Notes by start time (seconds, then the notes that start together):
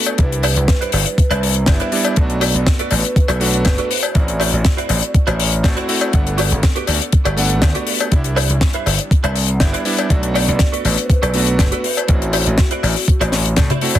Already playing: A3 B3 D4 F#4 G4 A4 B4 E5 F#5
0.06 closed hi-hat, cowbell
0.18 C2 G3 D4 E4 B4, kick, closed hi-hat
0.32 closed hi-hat
0.43 E4 B4 C5 D5, open hi-hat, cowbell
0.56 C2, closed hi-hat
0.68 kick, snare, closed hi-hat
0.81 E4 B4 C5 D5, closed hi-hat
0.92 G1, open hi-hat, cowbell
1.06 closed hi-hat
1.18 kick, closed hi-hat
1.31 C2 E4 B4 C5 D5, closed hi-hat, cowbell
1.43 open hi-hat
1.54 muted clean electric guitar stroke, closed hi-hat
1.66 G1 G3 B3 D4 E4 E5, kick, snare, closed hi-hat, cowbell
1.80 E4 B4 C5 D5, closed hi-hat
1.92 G3 B3 D4 E4, open hi-hat
2.05 closed hi-hat, cowbell
2.16 B1 A3 B3 D4 F#4 D5, kick, closed hi-hat
2.30 closed hi-hat
2.41 F#4 A4 B4 D5, open hi-hat, cowbell
2.55 B1, closed hi-hat
2.66 muted clean electric guitar stroke, kick, snare, closed hi-hat
2.79 F#4 A4 B4 D5, closed hi-hat
2.91 A1 B4, open hi-hat, cowbell
3.05 closed hi-hat
3.16 muted slap bass stroke, kick, closed hi-hat
3.28 B1 F#4 A4 B4 E5, closed hi-hat, cowbell
3.40 A3 B3 D4 F#4 B4, open hi-hat
3.53 muted clean electric guitar stroke, closed hi-hat
3.65 F#1, kick, snare, closed hi-hat, cowbell
3.78 F#4 A4 B4 D5, closed hi-hat
3.90 E4 F#4 C5 D5, open hi-hat
4.03 closed hi-hat, cowbell
4.14 A1 A3 C4 E4 F#4 D5, kick, closed hi-hat
4.28 closed hi-hat
4.40 E4 F#4 C5 D5, open hi-hat, cowbell
4.53 A1, closed hi-hat
4.64 muted clean electric guitar stroke, kick, snare, closed hi-hat
4.77 E4 F#4 C5 D5, closed hi-hat
4.89 A1, open hi-hat, cowbell
5.03 closed hi-hat
5.14 kick, closed hi-hat
5.27 A1 E4 F#4 C5 D5, closed hi-hat, cowbell
5.40 open hi-hat
5.52 muted clean electric guitar stroke, closed hi-hat
5.63 A3 C4 E4 F#4, kick, snare, closed hi-hat, cowbell
5.76 E4 F#4 C5 D5, closed hi-hat
5.88 A3 C4 E4 F#4, open hi-hat
6.01 closed hi-hat, cowbell
6.12 G1 A3 B3 D4 F#5, kick, closed hi-hat
6.27 closed hi-hat
6.38 F#4 G4 B4 D5, open hi-hat, cowbell
6.51 G1, closed hi-hat
6.63 kick, snare, closed hi-hat
6.75 F#4 G4 B4 D5, closed hi-hat
6.87 D2, open hi-hat, cowbell
7.02 closed hi-hat
7.12 muted slap bass stroke, kick, closed hi-hat
7.25 G1 F#4 G4 B4 D5, closed hi-hat, cowbell
7.37 A3 B3 D4 F#5, open hi-hat
7.50 muted clean electric guitar stroke, closed hi-hat
7.62 D2, kick, snare, closed hi-hat, cowbell
7.75 F#4 G4 B4 D5, closed hi-hat
7.87 open hi-hat
8.00 closed hi-hat, cowbell
8.11 C2 G3 D4 E4, kick, closed hi-hat
8.24 closed hi-hat
8.36 E4 B4 C5 D5, open hi-hat, cowbell
8.50 C2, closed hi-hat
8.61 muted clean electric guitar stroke, kick, snare, closed hi-hat
8.73 E4 B4 C5 E5, closed hi-hat
8.86 G1, open hi-hat, cowbell
8.99 closed hi-hat
9.11 kick, closed hi-hat
9.24 C2 E4 B4 C5 E5, closed hi-hat, cowbell
9.36 open hi-hat
9.48 muted clean electric guitar stroke, closed hi-hat
9.54 F#5
9.60 G1 G3 B3 D4 E4 E5, kick, snare, closed hi-hat, cowbell
9.73 E4 B4 C5 D5, closed hi-hat
9.85 G3 B3 D4 E4, open hi-hat
9.98 closed hi-hat, cowbell
10.09 B1 A3 B3 D4 F#4 D5, kick, closed hi-hat
10.23 closed hi-hat
10.34 F#4 A4 B4 D5, open hi-hat, cowbell
10.48 B1, closed hi-hat
10.59 muted clean electric guitar stroke, kick, snare, closed hi-hat
10.72 F#4 A4 B4 D5, closed hi-hat
10.85 A1 B4, open hi-hat, cowbell
10.98 closed hi-hat
11.03 C5
11.09 B4, muted slap bass stroke, kick, closed hi-hat
11.22 B1 F#4 A4 B4 D5, closed hi-hat, cowbell
11.34 A3 B3 D4 F#4, open hi-hat
11.47 muted clean electric guitar stroke, closed hi-hat
11.59 F#1, kick, snare, closed hi-hat, cowbell
11.72 F#4 A4 B4 D5, closed hi-hat
11.84 E4 F#4 C5 D5, open hi-hat
11.97 closed hi-hat, cowbell
12.07 A1 A3 C4 E4 F#4, kick, closed hi-hat
12.22 closed hi-hat
12.33 E4 F#4 C5 E5, open hi-hat, cowbell
12.46 A1, closed hi-hat
12.58 kick, snare, closed hi-hat
12.71 E4 F#4 C5 D5, closed hi-hat
12.83 A1, open hi-hat, cowbell
12.96 open hi-hat
13.08 kick, closed hi-hat
13.21 A1 E4 F#4 C5 D5, closed hi-hat, cowbell
13.32 snare, open hi-hat
13.45 muted clean electric guitar stroke, closed hi-hat
13.56 kick, snare, closed hi-hat, high tom, cowbell
13.70 E4 F#4 C5 D5, closed hi-hat, high tom
13.81 A3 C4 E4 F#4, open hi-hat
13.95 closed hi-hat, mid tom, cowbell